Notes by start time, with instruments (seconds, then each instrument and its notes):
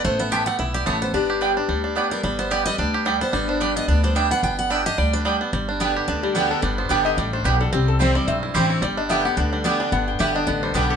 Already playing: five-string banjo B3, resonator guitar played with a steel bar A4
0.05 upright bass A1, five-string banjo A3, steel-string acoustic guitar C5
0.19 five-string banjo B3, steel-string acoustic guitar E5
0.31 mandolin B3 E4 C5 A5, five-string banjo G4, steel-string acoustic guitar G5
0.46 five-string banjo A3, steel-string acoustic guitar F#5
0.59 upright bass B1, five-string banjo E4, steel-string acoustic guitar E5
0.74 five-string banjo G4, steel-string acoustic guitar D5
0.86 upright bass A1, five-string banjo A3, mandolin B3 E4 C5 A5, steel-string acoustic guitar C#5
1.02 five-string banjo B3, steel-string acoustic guitar C5
1.14 upright bass G1, five-string banjo D4, resonator guitar played with a steel bar G4, steel-string acoustic guitar B4
1.30 five-string banjo G4
1.41 five-string banjo G3, mandolin B3 G4 D5 G5
1.57 five-string banjo D4
1.69 upright bass D2, five-string banjo G3
1.84 five-string banjo D4
1.95 mandolin B3 G4 D5 G5, five-string banjo B3
2.11 five-string banjo G3, steel-string acoustic guitar A#4
2.23 upright bass G1, five-string banjo G3, steel-string acoustic guitar B4
2.39 five-string banjo B3, steel-string acoustic guitar C5
2.51 mandolin B3 G4 D5 G5, five-string banjo G4, steel-string acoustic guitar D5
2.66 five-string banjo G3, steel-string acoustic guitar D#5
2.78 upright bass D2, five-string banjo D4, steel-string acoustic guitar D5
2.94 five-string banjo G4
3.05 five-string banjo G3, mandolin B3 G4 D5 G5
3.21 five-string banjo B3, steel-string acoustic guitar C5
3.33 upright bass G1, five-string banjo G3, resonator guitar played with a steel bar D4, steel-string acoustic guitar B4
3.49 five-string banjo D4, steel-string acoustic guitar C5
3.60 five-string banjo G3, mandolin B3 G4 D5 G5, steel-string acoustic guitar D5
3.76 five-string banjo B3, steel-string acoustic guitar D#5
3.88 upright bass D2, five-string banjo D4, steel-string acoustic guitar D5
4.04 five-string banjo G3, steel-string acoustic guitar C5
4.15 mandolin B3 G4 D5 G5, five-string banjo D4, steel-string acoustic guitar E5
4.31 five-string banjo B3, steel-string acoustic guitar F#5
4.43 upright bass G1, five-string banjo B3, steel-string acoustic guitar G5
4.59 steel-string acoustic guitar F#5
4.70 mandolin B3 G4 D5 G5, five-string banjo D4, steel-string acoustic guitar E5
4.86 five-string banjo G4, steel-string acoustic guitar D#5
4.98 upright bass D2, five-string banjo G3, steel-string acoustic guitar D5
5.13 five-string banjo D4, steel-string acoustic guitar B4
5.25 five-string banjo G3, mandolin B3 G4 D5 G5
5.41 five-string banjo B3
5.53 upright bass G1, steel-string acoustic guitar G2, five-string banjo G3
5.69 five-string banjo D4
5.80 steel-string acoustic guitar D3 G3 B3 G4, mandolin B3 G4 D5 G5, five-string banjo B3
5.96 five-string banjo G4
6.08 upright bass D2, steel-string acoustic guitar D3, five-string banjo D4
6.23 five-string banjo G3, resonator guitar played with a steel bar G4
6.35 steel-string acoustic guitar D3 G3 B3 G4, mandolin B3 G4 D5 G5, five-string banjo B3, resonator guitar played with a steel bar F#4
6.51 five-string banjo D4, resonator guitar played with a steel bar A4
6.62 upright bass G1, steel-string acoustic guitar G2, five-string banjo G3, resonator guitar played with a steel bar B4
6.78 five-string banjo B3, resonator guitar played with a steel bar C5
6.89 upright bass G1, steel-string acoustic guitar D3 G3 B3 G4, mandolin B3 G4 D5 G5, five-string banjo D4, resonator guitar played with a steel bar D5
7.05 five-string banjo G4, resonator guitar played with a steel bar D#5
7.17 upright bass A1, steel-string acoustic guitar A2, five-string banjo G3, resonator guitar played with a steel bar D5
7.33 five-string banjo D4, resonator guitar played with a steel bar C5
7.44 upright bass B1, steel-string acoustic guitar B2, mandolin B3 G4 D5 G5, five-string banjo G4, resonator guitar played with a steel bar B4
7.60 five-string banjo G3, resonator guitar played with a steel bar A4
7.73 upright bass C2, steel-string acoustic guitar C3, five-string banjo C4, resonator guitar played with a steel bar G4
7.88 resonator guitar played with a steel bar A4
7.99 steel-string acoustic guitar E3 G3 C4 E4, mandolin C4 E4 C5 G5, five-string banjo C4, resonator guitar played with a steel bar C5
8.15 five-string banjo G3, steel-string acoustic guitar C4 E4, resonator guitar played with a steel bar D5
8.27 upright bass B1, steel-string acoustic guitar G2, five-string banjo C4, resonator guitar played with a steel bar E5
8.43 five-string banjo E4
8.54 upright bass A1, steel-string acoustic guitar E3 G3 C4 E4, mandolin C4 E4 C5 G5, five-string banjo G4
8.70 five-string banjo C4, resonator guitar played with a steel bar C#5
8.82 upright bass G1, steel-string acoustic guitar G2, five-string banjo G3, resonator guitar played with a steel bar D5
8.97 five-string banjo D4, resonator guitar played with a steel bar D#5
9.09 steel-string acoustic guitar D3 G3 B3 G4, mandolin B3 G4 D5 G5, five-string banjo B3, resonator guitar played with a steel bar E5
9.25 steel-string acoustic guitar B3 G4, five-string banjo G4, resonator guitar played with a steel bar F#5
9.37 upright bass D2, steel-string acoustic guitar D3, five-string banjo D4, resonator guitar played with a steel bar G5
9.53 five-string banjo G3, resonator guitar played with a steel bar B4
9.64 steel-string acoustic guitar D3 G3 B3 G4, mandolin B3 G4 D5 G5, five-string banjo B3, resonator guitar played with a steel bar D5
9.80 five-string banjo D4, resonator guitar played with a steel bar G5
9.92 upright bass G1, steel-string acoustic guitar G2, five-string banjo B3, resonator guitar played with a steel bar F#5
10.08 resonator guitar played with a steel bar G5
10.19 upright bass G1, steel-string acoustic guitar D3 G3 B3 G4, mandolin B3 G4 D5 G5, five-string banjo G4, resonator guitar played with a steel bar E5
10.35 five-string banjo D4, resonator guitar played with a steel bar D#5
10.47 upright bass A1, steel-string acoustic guitar D3, five-string banjo B3, resonator guitar played with a steel bar D5
10.63 five-string banjo G3, resonator guitar played with a steel bar C5
10.74 upright bass B1, steel-string acoustic guitar D3 G3 B3 G4, mandolin B3 G4 D5 G5, five-string banjo D4, resonator guitar played with a steel bar B4
10.90 five-string banjo G4, resonator guitar played with a steel bar A4